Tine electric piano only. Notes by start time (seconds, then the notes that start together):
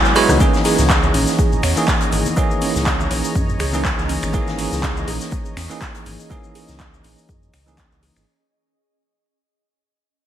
Already playing: F#3 G#3 B3 E4 G#4
0.15 F#3 G#3 B3 E4 C#5
0.39 E3 A#3 C#4 D#4 G#4
1.76 E3 A#3 C#4 D#4 G#4
2.36 E3 A#3 C#4 D#4 G#4
3.73 E3 A#3 C#4 D#4 G#4
4.33 E3 A#3 C#4 D#4 G#4
5.70 E3 A#3 C#4 D#4 G#4
6.30 E3 A#3 C#4 D#4 G#4
7.66 E3 A#3 C#4 D#4 G#4